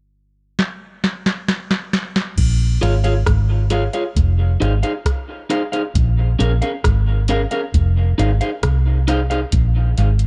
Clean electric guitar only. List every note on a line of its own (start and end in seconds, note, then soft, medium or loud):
2.81 2.93 F4 medium
2.81 2.93 G#4 medium
2.81 2.93 C#5 medium
2.81 2.94 F5 loud
3.04 3.14 F4 medium
3.04 3.13 G#4 medium
3.04 3.13 C#5 medium
3.04 3.13 F5 medium
3.71 3.82 F4 medium
3.71 3.83 G#4 medium
3.71 3.83 C#5 medium
3.71 3.83 F5 medium
3.94 4.03 F4 soft
3.94 4.03 G#4 medium
3.94 4.03 C#5 medium
3.94 4.02 F5 medium
4.60 4.72 D#4 medium
4.60 4.72 G#4 medium
4.60 4.72 C5 medium
4.60 4.73 F5 medium
4.83 4.92 D#4 medium
4.83 4.92 G#4 medium
4.83 4.92 C5 medium
4.83 4.92 F5 medium
5.50 5.61 D#4 medium
5.50 5.62 G#4 medium
5.50 5.62 C5 medium
5.50 5.62 F5 medium
5.72 5.82 D#4 medium
5.72 5.82 G#4 medium
5.72 5.82 C5 medium
5.72 5.81 F5 medium
6.39 6.51 C#4 medium
6.39 6.51 G#4 medium
6.39 6.51 A#4 medium
6.39 6.51 F5 medium
6.62 6.71 C#4 medium
6.62 6.71 G#4 medium
6.62 6.71 A#4 medium
6.62 6.71 F5 medium
7.29 7.40 C#4 medium
7.29 7.41 G#4 medium
7.29 7.41 A#4 medium
7.29 7.41 F5 medium
7.51 7.61 C#4 medium
7.51 7.61 G#4 medium
7.51 7.61 A#4 medium
7.51 7.60 F5 medium
8.18 8.30 D#4 medium
8.18 8.30 G#4 medium
8.18 8.30 C5 medium
8.18 8.30 F5 medium
8.41 8.50 D#4 medium
8.41 8.50 G#4 medium
8.41 8.50 C5 medium
8.41 8.50 F5 medium
9.08 9.19 D#4 medium
9.08 9.20 G#4 medium
9.08 9.20 C5 medium
9.08 9.20 F5 medium
9.30 9.40 D#4 soft
9.30 9.40 G#4 medium
9.30 9.39 C5 medium
9.30 9.39 F5 medium